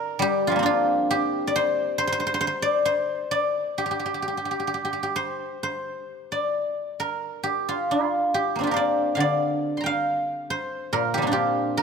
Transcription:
0.00 1.93 A#4 medium
0.00 0.49 C5 medium
0.00 1.00 D5 loud
0.19 0.50 G3 medium
0.19 1.10 G4 medium
0.47 1.17 F3 soft
0.47 0.65 F4 medium
0.51 0.72 G3 soft
0.56 3.78 A#3 soft
0.56 3.59 C4 soft
0.63 3.42 D4 medium
0.63 3.18 F4 medium
1.11 3.46 G4 medium
1.47 2.62 D5 medium
1.56 1.98 C5 medium
1.98 2.07 C5 medium
2.07 2.12 C5 medium
2.12 2.19 C5 medium
2.20 2.26 C5 medium
2.27 2.34 C5 medium
2.34 2.40 C5 medium
2.41 2.47 C5 medium
2.47 2.85 C5 medium
2.62 3.31 D5 medium
2.85 4.83 C5 medium
3.31 5.16 D5 medium
3.78 3.85 G4 medium
3.86 3.90 G4 soft
3.91 3.99 G4 soft
4.00 4.05 G4 soft
4.06 4.14 G4 soft
4.14 4.22 G4 soft
4.22 4.27 G4 soft
4.28 4.37 G4 soft
4.37 4.45 G4 soft
4.45 4.51 G4 soft
4.51 4.59 G4 soft
4.60 4.67 G4 soft
4.67 4.74 G4 soft
4.74 4.84 G4 soft
4.85 4.92 G4 soft
4.93 5.02 G4 soft
5.03 7.38 G4 soft
5.16 5.63 C5 medium
5.63 7.61 C5 medium
6.32 8.16 D5 medium
7.00 8.71 A#4 medium
7.43 8.34 G4 medium
7.69 7.91 F4 medium
7.91 8.63 F4 medium
8.34 8.67 G4 medium
8.55 11.22 A#3 soft
8.55 11.22 C4 soft
8.61 11.26 D4 soft
8.61 11.16 F4 soft
8.67 11.02 G4 soft
8.71 10.84 A#4 soft
8.71 10.50 C5 soft
8.76 9.20 D5 medium
9.15 11.79 D3 soft
9.15 9.86 F5 soft
9.20 11.05 D5 medium
9.77 11.21 A#5 soft
9.77 11.08 C6 soft
9.84 11.53 F5 medium
9.84 11.39 G5 soft
10.50 11.83 C5 medium
10.93 11.83 A#2 soft
10.93 11.77 A#4 medium
11.14 11.39 F3 soft
11.14 11.32 G4 medium
11.18 11.37 G3 soft
11.18 11.83 A#3 soft
11.23 11.83 C4 soft
11.27 11.83 D4 soft
11.31 11.83 F4 soft
11.31 11.83 G4 medium
11.77 11.83 A#4 medium

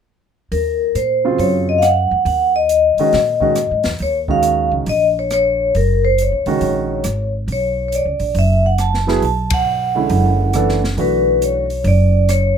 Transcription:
0.52 0.92 D#2 medium
0.52 0.96 A#4 medium
0.52 open hi-hat soft
0.95 1.35 A#2 medium
0.95 1.40 C5 medium
0.95 closed hi-hat soft
1.24 1.80 C#3 medium
1.24 1.79 F#3 soft
1.24 1.80 C4 medium
1.24 1.80 F4 medium
1.38 2.06 F#2 medium
1.38 1.65 C#5 medium
1.38 open hi-hat soft
1.69 1.77 D#5 medium
1.78 1.83 F5 medium
1.78 2.23 F#5 medium
1.78 closed hi-hat soft
1.83 cross-stick medium
2.11 2.25 F2 medium
2.25 2.93 D#2 medium
2.25 2.52 F#5 medium
2.25 open hi-hat soft
2.56 3.82 D#5 medium
2.69 closed hi-hat soft
2.97 3.12 D#3 medium
2.97 3.12 G#3 medium
2.97 3.12 C#4 medium
2.97 3.13 F#4 medium
2.97 muted upright bass stroke soft
2.97 open hi-hat soft
3.13 3.67 A#2 medium
3.13 snare soft
3.13 open hi-hat soft
3.40 3.54 D#3 medium
3.40 3.55 G#3 medium
3.40 3.55 C#4 medium
3.40 3.55 F#4 medium
3.40 kick soft
3.55 cross-stick medium
3.55 closed hi-hat soft
3.71 3.84 G#2 medium
3.83 3.99 E2 medium
3.83 snare soft
3.83 open hi-hat soft
3.99 4.68 D#2 medium
3.99 4.15 C#5 medium
3.99 open hi-hat soft
4.28 4.84 D#3 medium
4.28 4.84 G#3 medium
4.28 4.84 C#4 soft
4.28 4.85 F#4 medium
4.28 4.70 F5 medium
4.28 kick soft
4.43 closed hi-hat soft
4.71 4.86 C#2 medium
4.86 5.70 A#1 medium
4.86 5.02 D#5 medium
4.86 open hi-hat soft
5.19 5.25 C#5 medium
5.30 5.73 C#5 medium
5.30 cross-stick medium
5.30 closed hi-hat soft
5.75 6.29 F#1 medium
5.75 6.05 A#4 medium
5.75 open hi-hat soft
6.05 6.11 C5 medium
6.18 7.32 C#5 medium
6.18 closed hi-hat soft
6.32 6.46 A#1 soft
6.46 6.60 C#2 medium
6.46 7.02 D#3 medium
6.46 7.03 G#3 medium
6.46 7.03 C#4 medium
6.46 7.03 F#4 medium
6.46 open hi-hat soft
6.61 7.02 A#1 medium
6.61 open hi-hat soft
7.04 7.45 G#1 medium
7.04 cross-stick medium
7.04 closed hi-hat soft
7.48 8.02 B1 medium
7.48 open hi-hat soft
7.52 7.87 C#5 medium
7.88 7.93 C#5 medium
7.88 closed hi-hat soft
7.95 8.35 D5 medium
8.05 8.19 C#2 medium
8.20 8.34 A#1 medium
8.20 open hi-hat soft
8.34 9.19 F#1 medium
8.34 open hi-hat soft
8.39 8.64 E5 medium
8.66 8.81 F#5 medium
8.78 9.21 A5 medium
8.78 cross-stick medium
8.78 closed hi-hat soft
8.94 snare soft
9.07 9.21 F#3 medium
9.07 9.22 B3 medium
9.07 9.22 E4 medium
9.07 9.22 G#4 medium
9.07 snare soft
9.22 10.06 B1 medium
9.22 9.53 A5 medium
9.22 open hi-hat soft
9.50 10.80 F#5 medium
9.50 kick medium
9.50 ride medium
9.95 10.51 D3 medium
9.95 10.51 G#3 soft
9.95 10.52 C#4 soft
9.95 10.52 E4 medium
10.09 10.94 F#1 medium
10.09 open hi-hat soft
10.53 10.80 E3 medium
10.53 10.80 A3 medium
10.53 10.81 D4 medium
10.53 10.81 A4 medium
10.53 cross-stick medium
10.53 closed hi-hat soft
10.69 snare soft
10.84 snare soft
10.97 11.81 B1 medium
10.97 11.64 E3 medium
10.97 11.64 A3 soft
10.97 11.65 D4 soft
10.97 11.65 F#4 medium
10.97 open hi-hat soft
11.01 11.40 B4 medium
11.42 11.83 C#5 medium
11.42 closed hi-hat soft
11.70 open hi-hat soft
11.84 12.53 F#1 medium
11.84 12.27 D5 medium
11.84 open hi-hat soft
12.29 12.58 C#5 medium
12.29 cross-stick medium
12.29 closed hi-hat medium

